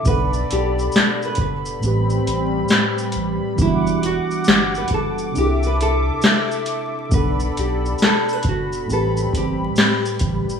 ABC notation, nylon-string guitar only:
X:1
M:4/4
L:1/16
Q:"Swing 16ths" 1/4=68
K:Bphr
V:1 name="Nylon-string guitar"
B2 G2 A B B8- B2 | E2 F2 G B A2 G B A2 z4 | B2 G2 A B F2 A2 G3 z3 |]